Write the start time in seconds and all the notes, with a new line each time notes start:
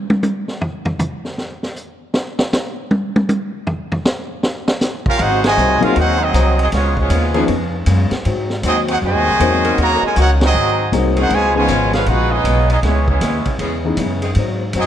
0.10 high tom
0.23 hi-hat pedal, high tom
0.48 snare
0.61 floor tom
0.85 floor tom
0.99 floor tom, hi-hat pedal
1.25 snare
1.38 snare
1.63 snare
1.76 hi-hat pedal
2.14 snare
2.39 snare
2.53 snare, hi-hat pedal
2.91 high tom
3.16 high tom
3.29 hi-hat pedal, high tom
3.67 floor tom
3.92 floor tom
4.05 snare, hi-hat pedal
4.43 snare
4.68 snare
4.81 snare, hi-hat pedal
5.06 C#4 F4 G4 A#4 F5, kick
5.18 G#1 G#2 F#3 C4 D#4 F#4 G#4 C5 F#5, ride
5.22 D#4
5.42 C3 D#3 G#3, snare, ride
5.46 F#4 C5 D#5 G#5
5.57 C2 G#2 F#3 C4 D#4, hi-hat pedal
5.81 F#3 A#3 C4 C#4 D#4 F4 F#4 G#4 A#4 F5, muted upright bass stroke, ride
5.95 D#2 G#2 F#3 C4 D#4 F#4, ride
5.99 D#4 G#4 C5 F#5
6.19 F#3 C4 D#4
6.23 C4 F#4 G#4 D#5
6.33 C2 G#2 F#3 C4 D#4, hi-hat pedal, ride
6.58 F#3 C4 D#4 G#4 D#5, ride
6.62 F#4
6.71 C#2 C#3 F3 G#3 B3 C#4 F4, snare, ride
6.76 B3 F4 G#4 C#5
6.97 F3 G#3 B3 C#4 F4 G#4 C#5, kick
7.10 D#2 C#3 G#3 B3 F4, hi-hat pedal, ride
7.34 F3 B3 C#4 D#4 G#4, ride
7.47 F2 C#3 G#3 B3 F4, ride
7.86 F#2 C#3 G#3 B3 F4, hi-hat pedal, ride
8.11 muted upright bass stroke, snare, ride
8.25 G#2 F#3 C4 D#4, ride
8.50 snare
8.63 D#2 G#2 F#3 C4 D#4 G#4 D#5, hi-hat pedal, ride
8.67 F#4
8.88 C4 D#4 F#4 G#4 C5 F#5, ride
9.02 F#2 G#2 C3 D#3 F#3 G#3 C4 D#4
9.06 F#4 C5 D#5 G#5
9.15 D#2
9.27 C2
9.39 E2 G#2 F#3 A#3 C4 D#4 G#4, hi-hat pedal, ride
9.65 F#3 C#4 D#4 A#4, ride
9.78 D#2 C#3 D#3 F#3 A#3 C#4 F#4 C#5 D#5 A#5, ride
10.02 G#3 A#4 C#5 G#5, muted upright bass stroke
10.07 F4
10.16 C#2 D#3 A#3 C#4 D#4 F#4 A#4 C#5, hi-hat pedal, ride
10.20 F#5
10.41 F#3 C4 D#4, snare, ride
10.45 C4 F#4 G#4 D#5
10.54 G#1 G#2 F#3 C4 D#4
10.92 C2 G#2 F#3 A#3 C4 D#4 G#4, hi-hat pedal, ride
11.16 F3 C4 C#4 D#4 F#4 G#4 C5 F#5, ride
11.30 C#2 B2 C#3 F3 G#3 B3 F4 B4 C#5 G#5, ride
11.55 B2 F3 G#3 B3 C#4 D#4 F4 G#4 B4 C#5 G#5
11.68 G#1 C#3 G#3 B3 F4, hi-hat pedal, ride
11.93 F3 G#3 B3 C#4 F4 G#4 B4 F5, snare, ride
12.06 A#1 C#3 G#3 B3 D#4 F4 F#4 G#4 B4 F#5, ride
12.31 G#3 B3 C#4 D#4 G#4 B4 D#5
12.44 B1 C#3 G#3 B3, hi-hat pedal, ride
12.48 F4
12.70 B3 D#4 F4 G#4 D#5, ride
12.83 C#2 C#3 E3 G#3 B3 C#4 E4 G#4 C#5, snare, ride
13.08 E3 G#3 B3 C#4 E4 G#4 C#5, kick
13.21 D#2 C#3 G#3 B3 E4, snare, hi-hat pedal, ride
13.45 muted upright bass stroke, kick, ride
13.59 E2 C#3 E3 G#3 B3 C#4 E4 G#4, ride
13.84 E3 B3 C#4 D#4 G#4
13.97 F#2 C#3 G#3 B3 E4, hi-hat pedal, ride
14.22 D#3 G#3 C4 G#4, ride
14.35 G#2 F#3 C4, ride
14.39 D#4
14.73 F#2 G#2 F#3 C4 D#4, hi-hat pedal, ride
14.77 F#3 C4 D#4 F#4 G#4 D#5